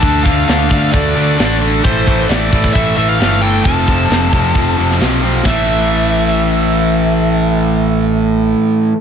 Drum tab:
RD |----------------|----------------|----------------|b---------------|
HH |o-o-o-o-o-o-o-o-|o-o-o-o-o-o-o-o-|o-o-o-o-o-o-o-o-|----------------|
SD |----o-------o---|----o-------o---|----o------oo---|o---------------|
BD |o-o---o-o-------|o-o---ooo-------|o-o---o-o-------|o---------------|

RD |----------------|
HH |----------------|
SD |----------------|
BD |----------------|